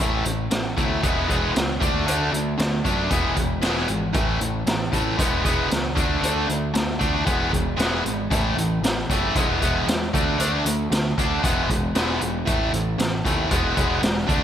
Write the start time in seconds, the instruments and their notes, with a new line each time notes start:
0.00 picked electric bass A1, distorted electric guitar A2 E3 A3, kick
0.25 picked electric bass A1, distorted electric guitar A2 E3, closed hi-hat
0.51 picked electric bass A1, distorted electric guitar A2 E3, snare, closed hi-hat
0.76 picked electric bass D2, distorted electric guitar A2 E3 A3, kick, closed hi-hat
1.03 picked electric bass E1, distorted electric guitar E3 G#3 B3, kick, closed hi-hat
1.28 picked electric bass E1, distorted electric guitar E3 G#3 B3, kick, closed hi-hat
1.55 picked electric bass C#2, distorted electric guitar E3 G#3, snare, closed hi-hat
1.80 picked electric bass D2, distorted electric guitar D3 A3 D4, kick, closed hi-hat
2.06 picked electric bass D2, distorted electric guitar D3 A3 D4, closed hi-hat
2.32 picked electric bass D2, distorted electric guitar D3 A3, closed hi-hat
2.58 picked electric bass D2, distorted electric guitar D3 A3, snare, closed hi-hat
2.84 picked electric bass F#2, distorted electric guitar D3 A3 D4, kick, closed hi-hat
3.10 picked electric bass E1, distorted electric guitar E3 G#3 B3, kick, closed hi-hat
3.37 picked electric bass E1, distorted electric guitar E3 G#3, kick, closed hi-hat
3.61 picked electric bass E1, distorted electric guitar E3 G#3 B3, snare, closed hi-hat
3.77 snare
3.88 picked electric bass G#1, distorted electric guitar E3 G#3, closed hi-hat
4.13 picked electric bass A1, distorted electric guitar A2 E3 A3, kick, closed hi-hat
4.40 picked electric bass A1, distorted electric guitar A2 E3, closed hi-hat
4.66 picked electric bass A1, distorted electric guitar A2 E3, snare, closed hi-hat
4.92 picked electric bass A1, distorted electric guitar A2 E3 A3, kick, closed hi-hat
5.17 picked electric bass E1, distorted electric guitar E3 G#3 B3, kick, closed hi-hat
5.44 picked electric bass E1, distorted electric guitar E3 G#3 B3, kick, closed hi-hat
5.70 picked electric bass C#2, distorted electric guitar E3 G#3, snare, closed hi-hat
5.95 picked electric bass D2, distorted electric guitar D3 A3 D4, kick, closed hi-hat
6.21 picked electric bass D2, distorted electric guitar D3 A3 D4, closed hi-hat
6.48 picked electric bass D2, distorted electric guitar D3 A3, closed hi-hat
6.74 picked electric bass D2, distorted electric guitar D3 A3, snare, closed hi-hat
6.99 picked electric bass D2, distorted electric guitar D3 A3 D4, kick, closed hi-hat
7.25 picked electric bass E1, distorted electric guitar E3 G#3 B3, kick, closed hi-hat
7.51 picked electric bass E1, distorted electric guitar E3 G#3, kick, closed hi-hat
7.77 picked electric bass E1, distorted electric guitar E3 G#3 B3, snare, closed hi-hat
8.04 picked electric bass G#1, distorted electric guitar E3 G#3, closed hi-hat
8.30 picked electric bass A1, distorted electric guitar A2 E3 A3, kick, closed hi-hat
8.56 picked electric bass A1, distorted electric guitar A2 E3, closed hi-hat
8.81 picked electric bass A1, distorted electric guitar A2 E3, snare, closed hi-hat
9.09 picked electric bass F#1, distorted electric guitar A2 E3 A3, kick, closed hi-hat
9.35 picked electric bass E1, distorted electric guitar E3 G#3 B3, kick, closed hi-hat
9.61 picked electric bass E1, distorted electric guitar E3 G#3 B3, kick, closed hi-hat
9.87 picked electric bass E2, distorted electric guitar E3 G#3, snare, closed hi-hat
10.13 picked electric bass D2, distorted electric guitar D3 A3 D4, kick, closed hi-hat
10.39 picked electric bass D2, distorted electric guitar D3 A3 D4, closed hi-hat
10.65 picked electric bass D2, distorted electric guitar D3 A3, closed hi-hat
10.90 picked electric bass D2, distorted electric guitar D3 A3, snare, closed hi-hat
11.18 picked electric bass D2, distorted electric guitar D3 A3 D4, kick, closed hi-hat
11.43 picked electric bass E1, distorted electric guitar E3 G#3 B3, kick, closed hi-hat
11.69 picked electric bass E1, distorted electric guitar E3 G#3, kick, closed hi-hat
11.95 picked electric bass E1, distorted electric guitar E3 G#3 B3, snare, closed hi-hat
12.21 picked electric bass E1, distorted electric guitar E3 G#3, closed hi-hat
12.46 picked electric bass A1, distorted electric guitar A2 E3 A3, kick, closed hi-hat
12.72 picked electric bass A1, distorted electric guitar A2 E3, closed hi-hat
12.98 picked electric bass A1, distorted electric guitar A2 E3, snare, closed hi-hat
13.24 picked electric bass D#2, distorted electric guitar A2 E3 A3, kick, closed hi-hat
13.50 picked electric bass E1, distorted electric guitar E3 G#3 B3, kick, closed hi-hat
13.75 picked electric bass E1, distorted electric guitar E3 G#3 B3, kick, closed hi-hat
14.01 picked electric bass E1, distorted electric guitar E3 G#3, snare, closed hi-hat
14.17 snare
14.27 picked electric bass D2, distorted electric guitar D3 A3 D4, kick, closed hi-hat